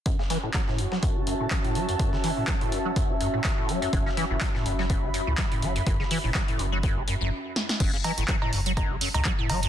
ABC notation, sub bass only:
X:1
M:4/4
L:1/16
Q:"Swing 16ths" 1/4=124
K:F#m
V:1 name="Sub bass" clef=bass
z16 | z16 | F,,, z2 F,,, z2 F,,,2 z F,,, z C,, z2 F,,, z | F,,, z2 F,,, z2 F,,,2 z F,,, z F,,, z4 |
F,,, z2 F,,, z2 F,,,2 z F,,, z C,, z2 F,,, z |]